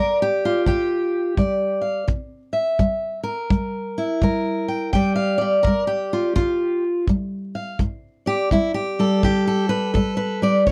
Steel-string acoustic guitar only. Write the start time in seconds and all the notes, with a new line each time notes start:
Already playing: G3 A#4 D5 F5
0.22 G4
0.45 F4
0.66 D3 G4
1.38 G3 D5
1.81 F5
2.08 C3
2.53 E5
2.80 G3
3.23 A#4
3.50 G3
3.98 E4
4.23 G3 A#4
4.68 G5
4.93 G2 G3 G4 D5 G5
5.16 F5
5.38 G4 D5
5.63 A#4
5.67 G3
5.87 G4
6.13 F4
6.36 D3 F4
7.09 G3
7.55 F5
7.80 G2
8.26 G4 D5
8.52 G3 E4
8.74 G4
8.99 G3 A4
9.24 D3 G4
9.47 A4
9.69 B4
9.94 G3 A4
10.17 B4
10.42 G3 D5
10.67 C#5